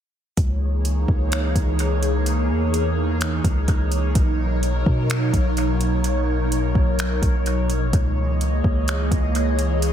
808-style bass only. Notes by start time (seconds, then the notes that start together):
0.37 C#2
1.08 C#2
1.55 C#2
2.50 E2
3.44 C#2
3.68 C#2
4.15 B1
4.86 B2
5.33 B1
6.40 A#1
6.57 B1
6.75 B1
7.22 B1
7.70 A#1
7.93 C#2
8.64 C#2
9.11 C#2